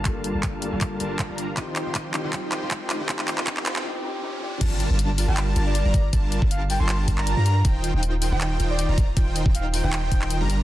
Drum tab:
CC |----------------|----------------|----------------|x---------------|
HH |x-x-x-x-x-x-x-x-|x-x-x-x-x-x-x-x-|x-x-x-x---------|x-x-x-o-x-x-x-x-|
CP |x---x---x---x---|x-x-x-x-x-x-x-x-|xxxxxxxx--------|--------x-------|
BD |o---o---o---o---|o---o---o---o---|o---o-----------|o-------------o-|

CC |----------------|----------------|----------------|
HH |x-x-x-o-x-x-x-x-|x-x-x-o-x-x-x-x-|x-x-x-o-x-x-x-x-|
CP |--------x--x----|--------x-------|--------x--x----|
BD |o--o------o-----|o-------------o-|o--o------o-----|